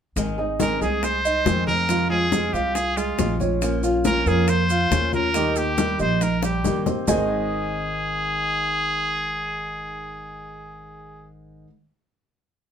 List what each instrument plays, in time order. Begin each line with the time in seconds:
0.16 upright bass G#1, nylon-string guitar D#3 G#3 C4 D#4 G#4, high bongo, high conga, maracas
0.38 nylon-string guitar C4 D#4 G#4, grand piano D#4 D#5, high conga
0.59 nylon-string guitar D#3 G#3 C4 D#4 G#4, muted trumpet A#4, high bongo, high conga, maracas
0.81 upright bass C2, grand piano G#3 G#4, nylon-string guitar C4 D#4 G#4, muted trumpet G#4, maracas
1.03 muted trumpet C5, muted nylon-string guitar stroke, high bongo, high conga, maracas
1.24 grand piano D#4 D#5, high conga, maracas
1.45 upright bass F2, nylon-string guitar D#3 G#3 C4 D#4 G#4, grand piano C4 C5, high bongo, low bongo, high conga, maracas
1.67 nylon-string guitar C4 D#4 G#4, muted trumpet A#4, high conga, maracas
1.88 nylon-string guitar C3 F3 G#3 C4 F4, grand piano F3 F4, high bongo, high conga, maracas
2.10 nylon-string guitar G#3 C4 F4, muted trumpet G#4, high conga
2.32 nylon-string guitar C3 F3 G#3 C4 F4, grand piano G#3 G#4, high bongo, high conga, maracas
2.53 upright bass C2, nylon-string guitar G#3 C4 F4, grand piano F4 F5, muted trumpet G4, high bongo, high conga, maracas
2.75 muted trumpet G#4, muted nylon-string guitar stroke, high bongo, high conga, maracas
2.97 grand piano G#3 G#4, muted trumpet F4, high bongo, high conga, maracas
3.18 upright bass A#1, nylon-string guitar C3 F3 G#3 C4 F4, high bongo, low bongo, high conga, maracas
3.40 nylon-string guitar G#3 C4 F4, grand piano C#4 C#5, high bongo, high conga, maracas
3.62 nylon-string guitar F3 A#3 C#4 F4, high bongo, high conga, maracas
3.83 nylon-string guitar A#3 C#4 F4, grand piano F4 F5, high conga, maracas
4.05 nylon-string guitar F3 A#3 C#4 F4, muted trumpet A#4, high bongo, high conga, maracas
4.26 upright bass F2, grand piano A#3 A#4, nylon-string guitar A#3 C#4 F4, muted trumpet G#4, maracas
4.48 muted trumpet C5, muted nylon-string guitar stroke, high bongo, high conga, maracas
4.70 grand piano F4 F5, high conga, maracas
4.91 upright bass D#2, nylon-string guitar F3 A#3 C#4 F4, grand piano C#4 C#5, high bongo, low bongo, high conga, maracas
5.13 nylon-string guitar A#3 C#4 F4, muted trumpet A#4, high conga, maracas
5.34 nylon-string guitar D#3 G3 A#3 D#4 G4, grand piano D#3 D#4, high bongo, high conga, maracas
5.56 nylon-string guitar A#3 D#4 G4, muted trumpet G4, high conga, maracas
5.77 nylon-string guitar D#3 G3 A#3 D#4 G4, grand piano G3 G4, high bongo, high conga, maracas
5.99 upright bass A#1, nylon-string guitar A#3 D#4 G4, grand piano D#4 D#5, muted trumpet C5, high bongo, high conga, maracas
6.21 muted trumpet A#4, muted nylon-string guitar stroke, high bongo, high conga, maracas
6.43 grand piano G3 G4, muted trumpet G4, high bongo, high conga, maracas
6.64 upright bass G#1, nylon-string guitar D#3 G3 A#3 D#4 G4, high bongo, high conga, maracas
6.86 nylon-string guitar A#3 D#4 G4, grand piano C4 C5, low bongo, high conga, maracas
7.08 upright bass G#1, nylon-string guitar G#2 D#3 G#3 C4 D#4 G#4, grand piano G#3 D#4 G#4 C5 D#5 G#5, muted trumpet G#4, low bongo, low conga, maracas